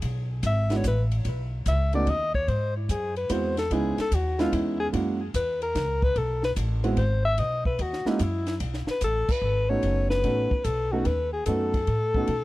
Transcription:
0.02 upright bass B1, kick, ride
0.43 upright bass G#1, alto saxophone E5, kick, hi-hat pedal, ride
0.70 grand piano G#3 B3 D4 E4 F#4, snare, ride
0.77 alto saxophone C#5
0.84 upright bass A1, alto saxophone B4, kick, hi-hat pedal, ride
1.11 ride
1.25 upright bass B1, kick, ride
1.66 upright bass C#2, alto saxophone E5, kick, hi-hat pedal, ride
1.93 grand piano A3 B3 C#4 D#4 F#4, alto saxophone D5, ride
2.07 upright bass D#2, alto saxophone D#5, kick, ride
2.34 alto saxophone C#5, kick
2.48 upright bass G#2, alto saxophone C5, kick, ride
2.77 alto saxophone E4
2.89 upright bass F#2, alto saxophone G#4, kick, hi-hat pedal, ride
3.16 alto saxophone B4, ride
3.29 upright bass E2, grand piano G#3 B3 C4 E4 F#4, alto saxophone C5, kick, hi-hat pedal, ride
3.57 alto saxophone A4, snare, ride
3.71 upright bass C#2, grand piano G#3 B3 C#4 D#4 E4, alto saxophone G#4, kick, ride
3.98 alto saxophone A4, muted upright bass stroke, snare, ride
4.11 upright bass D#2, alto saxophone F#4, kick, hi-hat pedal, ride
4.39 grand piano G#3 B3 C#4 D#4 E4, alto saxophone F4, snare, ride
4.53 upright bass E2, alto saxophone E4, kick, ride
4.80 alto saxophone G#4
4.93 upright bass F#2, grand piano G#3 A#3 C#4 E4 F#4, kick, ride
5.34 upright bass E2, alto saxophone B4, kick, hi-hat pedal, ride
5.62 alto saxophone A#4, ride
5.75 upright bass C#2, kick, snare, ride
6.02 alto saxophone B4, kick
6.16 upright bass B1, alto saxophone A4, kick, ride
6.43 alto saxophone B4, snare
6.56 upright bass A1, kick, hi-hat pedal, ride
6.84 grand piano G#3 B3 C4 E4 F#4, ride
6.97 upright bass G#1, alto saxophone C5, kick, ride
7.25 alto saxophone E5
7.38 upright bass B1, alto saxophone D#5, kick, ride
7.65 alto saxophone B4, kick
7.79 upright bass D#2, alto saxophone F#4, kick, ride
7.93 snare
8.05 grand piano G#3 A#3 C#4 E4 F#4, alto saxophone D#4, muted upright bass stroke, snare
8.19 upright bass F#2, alto saxophone E4, kick, hi-hat pedal, ride
8.46 snare, ride
8.60 upright bass B1, kick, ride
8.74 snare
8.87 alto saxophone B4, muted upright bass stroke, snare
9.01 upright bass A1, alto saxophone A4, kick, hi-hat pedal, ride
9.29 alto saxophone B4, muted upright bass stroke, kick, crash
9.42 upright bass G#1
9.69 grand piano A3 B3 C#4 D#4 F#4, alto saxophone C#5
9.83 upright bass F#1, kick, ride
10.10 alto saxophone B4, snare
10.24 upright bass A1, grand piano A3 B3 C#4 D#4 F#4, kick, ride
10.51 muted upright bass stroke, kick
10.64 upright bass B1, alto saxophone A4, kick, hi-hat pedal, ride
10.92 grand piano A3 B3 C#4 D#4 A4, alto saxophone F#4
11.05 upright bass D#2, alto saxophone B4, kick, ride
11.33 alto saxophone G#4
11.46 upright bass F#2, grand piano A3 B3 C#4 D#4 F#4, alto saxophone A4, kick, hi-hat pedal, ride
11.74 kick, ride
11.87 upright bass A2, kick, ride
12.14 grand piano A3 B3 C#4 D#4 F#4, kick
12.27 upright bass B2, kick, ride

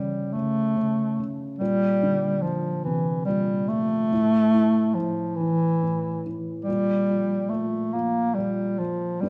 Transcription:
Already playing: felt piano C#3, bass clarinet G3
0.33 felt piano C#3, bass clarinet A3
0.77 felt piano C#3
1.20 felt piano C#3
1.58 felt piano A#2, bass clarinet G3
2.03 felt piano D3
2.42 felt piano A#2, bass clarinet F3
2.84 felt piano C3, bass clarinet E3
3.25 felt piano A#2, bass clarinet G3
3.69 felt piano F3, bass clarinet A3
4.12 felt piano A2
4.54 felt piano E4
4.95 felt piano A2, bass clarinet F3
5.36 bass clarinet E3
5.41 felt piano E3
5.83 felt piano A2
6.26 felt piano E3
6.64 bass clarinet G3
6.68 felt piano A#2
7.11 felt piano F3
7.50 felt piano A#2, bass clarinet A3
7.93 felt piano F3, bass clarinet A#3
8.34 felt piano A#2, bass clarinet G3
8.79 bass clarinet F3, felt piano F3
9.21 felt piano G2, bass clarinet G3

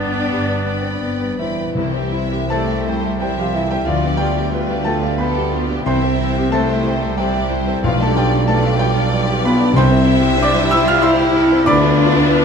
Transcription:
Already playing: double bass section G1, cello section G2, grand piano G2 B3 B4, oboe B3, clarinet B3, french horn section B3 D4, viola section D4, flute D5, violin section B5
0.00 violin section D5 G5
0.14 grand piano B4
0.30 double bass section G1, cello section G2, grand piano G4
0.48 grand piano B4
0.65 grand piano B3, violin section D5 G5 B5
0.82 grand piano C4
1.01 double bass section G1, cello section G2, grand piano B3
1.21 grand piano B4
1.39 cello section E3, french horn section E3, grand piano B3 E4 C5 E5, violin section D5 G5 B5
1.60 grand piano B4
1.74 double bass section C2, tuba C2, grand piano C2, timpani C3, viola section E3 E4, violin section E4 G4 C5
1.93 viola section G3 C4, grand piano C4, violin section G4 E5
2.11 viola section E3 E4, violin section E4 C5 E5, grand piano E4
2.30 viola section G3 C4, violin section G4 E5, grand piano G4
2.48 viola section E3 E4, french horn section A3, cello section A3, violin section E4 C5 D5, grand piano A4 C5 E5 A5
2.67 viola section G3 C4, violin section G4 E5
2.71 grand piano E5
2.85 viola section E3 E4, violin section E4 C5
2.89 grand piano G5
3.02 viola section G3 C4, violin section G4 E5
3.06 grand piano E5
3.18 viola section E3 E4, french horn section G3, cello section G3, violin section E4 C5 E5, grand piano G4 G5
3.22 grand piano C5
3.36 french horn section F3, cello section F3, viola section G3 C4, violin section G4 E5, grand piano G4 F5
3.40 grand piano F4
3.50 french horn section E3, viola section E3 E4, cello section E3, violin section E4 C5
3.55 grand piano E4 E5
3.69 cello section G3, viola section G3 C4, french horn section G3, grand piano C4 G4 G5, violin section G4 E5
3.85 tuba D2, double bass section D2, grand piano D2 F4 D5 F5, french horn section F3, cello section F3, viola section F3 F4, violin section F4 B4 D5
4.03 viola section G3 D4, grand piano B3, violin section G4 D5
4.17 viola section F3 F4, french horn section G3, cello section G3, violin section F4 B4, grand piano F4 G4 D5 G5
4.35 viola section G3 D4, violin section G4 D5, grand piano G4
4.53 viola section F3 F4, violin section F4 B4, grand piano B4
4.70 viola section G3 D4, violin section G4 D5, grand piano F5
4.84 viola section F3 F4, cello section A3, french horn section A3, violin section F4 B4, grand piano A4 G5 A5
5.03 viola section G3 D4, violin section G4 D5, grand piano F5
5.18 viola section F3 F4, french horn section B3, cello section B3, violin section F4 A4 B4, grand piano B4 G5 B5
5.34 viola section D4, violin section G4 D5, grand piano G4
5.38 viola section G3
5.52 viola section F3 F4, grand piano F4, violin section F4 G4 B4
5.67 viola section G3 D4, grand piano B3, violin section G4 D5
5.83 double bass section C2, tuba C2, grand piano C2 C6, viola section E3 E4, french horn section C4, cello section C4, violin section E4 C5 E5
5.87 grand piano C5 G5
6.02 viola section G3 C4, grand piano C4, violin section G4 E5
6.19 viola section E3 E4, violin section E4 C5, grand piano E4
6.36 viola section G3 C4, violin section G4 E5, grand piano G4
6.49 viola section E3 E4, french horn section A3, cello section A3, violin section E4 C5, grand piano A4 A5
6.54 grand piano C5 E5
6.68 viola section G3 C4, violin section G4 E5, grand piano E5
6.82 viola section E3 E4, violin section E4 C5
6.88 grand piano G5
7.00 viola section G3 C4, violin section G4 E5, grand piano E5
7.15 viola section E3 E4, french horn section G3, cello section G3, violin section E4 C5 D5, grand piano G4 E5 G5
7.21 grand piano C5
7.34 viola section G3 C4, violin section G4 E5, grand piano G4
7.50 viola section E3 E4, grand piano E4, violin section E4 C5
7.65 viola section G3 C4, grand piano C4, violin section G4 E5
7.80 double bass section B1, tuba B1, grand piano B1, french horn section F3, cello section F3, viola section F3 F4, violin section B4 D5
7.84 grand piano F4 F5, violin section D5
7.94 french horn section A3, violin section G4 B4
7.99 viola section G3 D4, cello section A3, grand piano D4 A5
8.03 grand piano A4
8.11 french horn section G3, cello section G3, grand piano F4
8.16 viola section F3 F4, grand piano G4 G5, violin section B4 D5
8.30 viola section G3 D4, grand piano G4, violin section G4 B4
8.46 viola section F3 F4, cello section A3, french horn section A3, grand piano A4 D5 A5, violin section B4 D5
8.64 viola section G3 D4, violin section G4 B4, grand piano F5
8.76 viola section F3 F4, french horn section G3, cello section G3, violin section B4 D5, grand piano G5
8.81 grand piano G4
8.94 viola section G3 D4, violin section G4 B4, grand piano F5
9.09 viola section F3 F4, violin section B4 D5, grand piano D5
9.26 viola section G3 D4, violin section G4 B4, grand piano G4
9.42 viola section F3 F4, french horn section B3, cello section B3, grand piano F4 B5, violin section B4 D5
9.46 grand piano B4
9.58 viola section G3 D4, grand piano D4, violin section G4 B4
9.72 double bass section C2, timpani C3, violin section G3 C5, viola section G3 E4, french horn section C4, cello section C4
9.76 grand piano C2 C5 G5 C6, tuba C2, violin section E5
9.89 violin section C4, grand piano C4
10.05 grand piano E4, violin section E4
10.20 violin section G4, grand piano G4
10.37 french horn section D4, cello section D4, violin section E4, grand piano C5
10.42 grand piano D5 D6
10.53 violin section C4, grand piano E5
10.69 violin section G3, french horn section E4, cello section E4, grand piano E5 G5 E6
10.84 violin section C4, cello section F4, french horn section F4, grand piano E5 F6
10.90 grand piano F5
11.00 french horn section E4, violin section E4 C5, cello section E4, grand piano C5 E5 C6 E6
11.16 violin section G4, grand piano G4
11.31 violin section E4
11.35 grand piano E4, violin section A4
11.47 violin section C4
11.52 grand piano C4
11.64 grand piano D2 D5 B5 D6, tuba D2, double bass section D2, violin section B3 B4, viola section B3 F4, cello section D4, french horn section D4
11.70 violin section B4
11.81 grand piano B3, violin section D4
11.97 violin section F4, grand piano F4
12.01 violin section B4
12.13 grand piano B3, violin section D4
12.30 violin section B3, grand piano B4

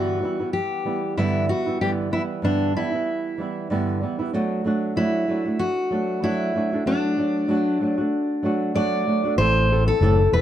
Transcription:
Already playing: nylon-string guitar G2 D3 E3 G3 B3 E4, steel-string acoustic guitar F#4
0.22 nylon-string guitar E3 G3 B3 E4
0.39 nylon-string guitar E3 G3 B3 E4
0.53 steel-string acoustic guitar G4
0.85 nylon-string guitar E3 G3 B3 E4
1.17 nylon-string guitar G2 D3 E3 G3 B3 E4, steel-string acoustic guitar E4
1.48 nylon-string guitar E3 G3 B3 E4, steel-string acoustic guitar F#4
1.66 nylon-string guitar E3 G3 B3 E4
1.81 nylon-string guitar G2 D3 E3 G3 B3 E4, steel-string acoustic guitar G4
2.11 nylon-string guitar E3 G3 B3 E4, steel-string acoustic guitar E4
2.42 nylon-string guitar G2 D3 E3 G3 B3 E4, steel-string acoustic guitar D4
2.75 nylon-string guitar E3 G3 B3 E4, steel-string acoustic guitar E4
2.92 nylon-string guitar E3 G3 B3 E4
3.38 nylon-string guitar E3 G3 B3 E4
3.70 nylon-string guitar G2 D3 E3 G3 B3 E4
4.01 nylon-string guitar E3 G3 B3 E4
4.19 nylon-string guitar E3 G3 B3 E4
4.33 nylon-string guitar F#3 A3 D4 F#4
4.64 nylon-string guitar F#3 A3 D4 F#4
4.96 nylon-string guitar F#3 A3 D4 F#4, steel-string acoustic guitar E4
5.28 nylon-string guitar F#3 A3 D4 F#4
5.45 nylon-string guitar A3 D4 F#4
5.59 steel-string acoustic guitar F#4
5.91 nylon-string guitar F#3 A3 D4 F#4
6.22 nylon-string guitar F#3 A3 D4 F#4, steel-string acoustic guitar E4
6.54 nylon-string guitar F#3 A3 D4 F#4
6.72 nylon-string guitar A3 D4 F#4
6.86 nylon-string guitar F#3 A3 D4 F#4, steel-string acoustic guitar D4
7.17 nylon-string guitar F#3 A3 D4 F#4
7.48 nylon-string guitar F#3 A3 D4 F#4
7.81 nylon-string guitar F#3 A3 D4 F#4
7.98 nylon-string guitar A3 D4 F#4
8.43 nylon-string guitar F#3 A3 D4 F#4
8.74 nylon-string guitar F#3 A3 D4 F#4, steel-string acoustic guitar D5
9.06 nylon-string guitar F#3 A3 D4 F#4
9.24 nylon-string guitar A3 D4 F#4
9.38 fingered electric bass A1, nylon-string guitar A2 E3 C4 E4 A4, steel-string acoustic guitar C5
9.69 nylon-string guitar E3 C4 E4 A4
9.86 nylon-string guitar C4 E4 A4, steel-string acoustic guitar A4
10.01 fingered electric bass F#1, nylon-string guitar A2 E3 C4 E4 A4
10.19 nylon-string guitar C4 E4 A4
10.32 fingered electric bass E1, nylon-string guitar E3 C4 E4 A4, steel-string acoustic guitar B4

